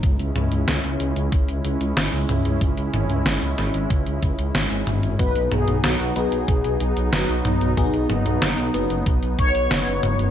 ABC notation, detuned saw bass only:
X:1
M:4/4
L:1/16
Q:1/4=93
K:B
V:1 name="Detuned saw bass" clef=bass
C,, C,, C,, C,, C,, C,, C,, C,, C,, C,, C,, C,, G,,, C,, C,, C,, | C,, C,, G,,, C,, G,,, C,, G,,, G,,, C,, C,, C,, C,, G,,, G,,, G,,, G,,, | B,,, B,,, B,,, B,,, B,,, B,,, B,,, B,,, B,,, B,,, B,,, B,,, F,,, B,,, B,,, B,,, | B,,, B,,, F,,, B,,, F,,, B,,, F,,, F,,, B,,, B,,, B,,, B,,, F,,, F,,, F,,, F,,, |]